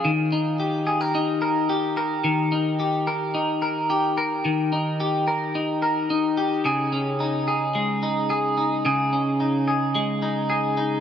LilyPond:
\new Staff \with { instrumentName = "Clean electric guitar" } { \time 4/4 \key ees \mixolydian \tempo 4 = 109 ees8 ees'8 g'8 aes'16 bes'16 ees'8 bes'8 g'8 bes'8 | ees8 ees'8 g'8 bes'8 ees'8 bes'8 g'8 bes'8 | ees8 ees'8 g'8 bes'8 ees'8 bes'8 ees'8 g'8 | <des aes'>8 des'8 ees'8 aes'8 aes8 ees'8 aes'8 ees'8 |
<des aes'>8 des'8 ees'8 aes'8 aes8 ees'8 aes'8 ees'8 | }